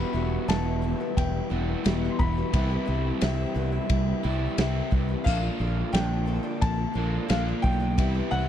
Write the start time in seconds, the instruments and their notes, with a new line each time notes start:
Already playing: overdriven electric guitar E2 B2 E3 G3 B3 E4, string section G3 E4 B4, twelve-string acoustic guitar F#4, grand piano B5
0.00 twelve-string acoustic guitar E3 G3 B3
0.13 fingered electric bass E1, twelve-string acoustic guitar E3 G3 B3 F#4
0.48 fingered electric bass E1, twelve-string acoustic guitar E2 B2 E3 G3 B3 F#4, grand piano A5, snare, ride bell
0.82 twelve-string acoustic guitar E3 G3 B3 F#4
1.00 twelve-string acoustic guitar E3 G3 B3
1.17 fingered electric bass E1, grand piano G5, kick, ride bell
1.50 fingered electric bass E1, overdriven electric guitar E2 B2 E4, twelve-string acoustic guitar E3 G3 B3
1.84 fingered electric bass E1, twelve-string acoustic guitar E2 B2 E3 G3 B3 F#4, overdriven electric guitar E4, snare, ride bell
2.04 snare
2.11 grand piano C6
2.19 fingered electric bass E1, twelve-string acoustic guitar E3 G3 B3 F#4, grand piano B5, kick
2.37 twelve-string acoustic guitar E3 G3 B3 F#4
2.53 fingered electric bass C2, twelve-string acoustic guitar C3 E3 G3 B3 E4, overdriven electric guitar C4, string section C4 E4 G4 B4, kick, ride bell
2.70 twelve-string acoustic guitar G3 B3 E4
2.86 fingered electric bass C2, twelve-string acoustic guitar E3 G3 E4
3.21 fingered electric bass C2, twelve-string acoustic guitar C3 E3 G3 E4, snare, ride bell
3.54 fingered electric bass C2, twelve-string acoustic guitar E3 G3 B3 E4
3.72 twelve-string acoustic guitar G3 E4
3.90 fingered electric bass C2, kick, ride bell
4.23 fingered electric bass C2, overdriven electric guitar C3 C4, twelve-string acoustic guitar E3 G3 E4
4.57 fingered electric bass C2, twelve-string acoustic guitar C3 E3 G3 E4, overdriven electric guitar C4, snare, ride bell
4.91 fingered electric bass C2, twelve-string acoustic guitar E3 G3 B3 E4, kick
5.09 twelve-string acoustic guitar G3 B3 E4
5.24 fingered electric bass A#1, twelve-string acoustic guitar A#2 F3 A3 D4 F4, overdriven electric guitar D3 A#3, string section D4 F4 A4 A#4, grand piano F5, kick, crash
5.42 twelve-string acoustic guitar A3 D4 F4
5.59 fingered electric bass A#1, twelve-string acoustic guitar F3 D4 F4
5.92 fingered electric bass A#1, twelve-string acoustic guitar A#2 F3 D4 F4, grand piano G5, snare, ride bell
6.26 twelve-string acoustic guitar F3 A3 D4 F4
6.43 twelve-string acoustic guitar D4 F4
6.61 fingered electric bass A#1, grand piano A5, kick, ride bell
6.93 fingered electric bass A#1, twelve-string acoustic guitar F3 D4 F4, overdriven electric guitar A#3
6.98 overdriven electric guitar A#2 D3
7.28 fingered electric bass A#1, twelve-string acoustic guitar A#2 F3 D4 F4, overdriven electric guitar D3 A#3, grand piano F5, snare, ride bell
7.48 snare
7.62 fingered electric bass B1, twelve-string acoustic guitar F3 A3 D4 F4, grand piano G5, kick
7.80 twelve-string acoustic guitar A3 D4 F4
7.97 fingered electric bass C2, twelve-string acoustic guitar C3 E3 G3 B3 E4, string section C4 E4 G4 B4, overdriven electric guitar C4, kick, ride bell
8.14 twelve-string acoustic guitar G3 B3 E4
8.31 fingered electric bass C2, twelve-string acoustic guitar E3 G3 E4, grand piano F#5